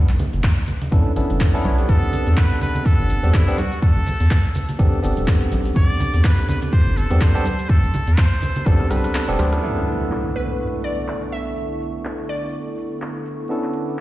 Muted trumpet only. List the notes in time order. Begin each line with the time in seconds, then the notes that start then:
1.89 A4
2.37 B4
2.62 B4
2.86 A4
3.34 E4
3.58 F#4
3.82 A4
5.76 D5
6.24 B4
6.49 B4
6.73 C5
6.97 A4
7.21 C5
7.69 A4
8.18 C5
8.66 A4
8.91 B4